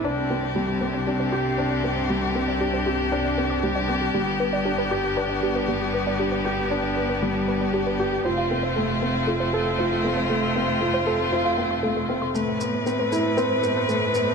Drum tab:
SH |--------|--------|--------|--------|

SH |--------|--------|xxxxxxxx|